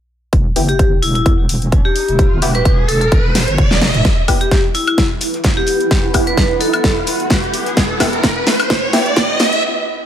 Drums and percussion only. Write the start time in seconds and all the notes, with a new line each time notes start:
0.33 kick, closed hi-hat
0.56 open hi-hat
0.69 closed hi-hat
0.79 kick, closed hi-hat
1.03 open hi-hat
1.15 closed hi-hat
1.26 kick, closed hi-hat
1.49 open hi-hat
1.62 closed hi-hat
1.72 kick, closed hi-hat
1.96 open hi-hat
2.08 closed hi-hat
2.19 kick, closed hi-hat
2.42 open hi-hat
2.55 closed hi-hat
2.65 kick, closed hi-hat
2.89 open hi-hat
3.01 closed hi-hat
3.12 kick, closed hi-hat
3.35 snare, open hi-hat
3.48 closed hi-hat
3.58 kick, closed hi-hat, mid tom
3.71 snare
3.81 snare, open hi-hat
3.94 closed hi-hat, mid tom
4.05 kick, snare, closed hi-hat
4.28 kick, closed hi-hat, open hi-hat, high woodblock
4.41 closed hi-hat
4.51 kick, snare, closed hi-hat
4.74 closed hi-hat, open hi-hat
4.87 closed hi-hat, high woodblock
4.98 kick, snare, closed hi-hat
5.21 snare, closed hi-hat, open hi-hat
5.34 snare, closed hi-hat
5.44 kick, snare, closed hi-hat
5.67 closed hi-hat, open hi-hat
5.81 closed hi-hat
5.91 kick, snare, closed hi-hat
6.14 kick, closed hi-hat, open hi-hat, high woodblock
6.27 closed hi-hat
6.37 kick, snare, closed hi-hat
6.60 closed hi-hat, open hi-hat
6.74 closed hi-hat, high woodblock
6.84 kick, snare, closed hi-hat
6.96 snare
7.07 snare, closed hi-hat, open hi-hat
7.20 closed hi-hat
7.30 kick, snare, closed hi-hat
7.43 closed hi-hat
7.54 closed hi-hat, open hi-hat
7.66 snare, closed hi-hat
7.77 kick, snare, closed hi-hat
8.00 kick, snare, closed hi-hat, open hi-hat, high woodblock
8.13 closed hi-hat
8.23 kick, snare, closed hi-hat
8.46 snare, closed hi-hat, open hi-hat
8.59 snare, closed hi-hat, high woodblock
8.70 kick, snare, closed hi-hat
8.93 snare, closed hi-hat, open hi-hat
9.06 snare, closed hi-hat
9.16 kick, snare, closed hi-hat
9.39 snare, closed hi-hat, open hi-hat
9.53 closed hi-hat